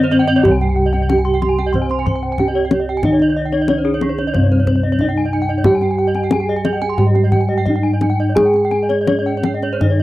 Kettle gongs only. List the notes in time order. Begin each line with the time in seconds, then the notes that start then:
Already playing: G2
0.43 G4
0.49 C2
1.10 C#4
2.40 C#4
3.05 D#4
3.70 C#4
4.34 G2
5.00 C#4
5.65 G4
6.31 C#4
6.98 G#2
7.67 C#4
8.36 G#4
9.08 C#4
9.81 G2